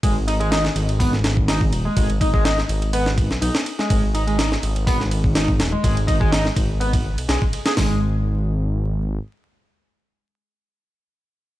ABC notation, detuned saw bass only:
X:1
M:4/4
L:1/16
Q:"Swing 16ths" 1/4=124
K:G#m
V:1 name="Detuned saw bass" clef=bass
G,,,4- G,,, z G,,,8 D,,, z | G,,,4- G,,, z G,,,4- G,,, B,,, B,,, z3 | G,,,4- G,,, z G,,,8 D,,, z | G,,,4- G,,, z G,,,4- G,,, B,,, B,,, z3 |
G,,,12 z4 | z16 |]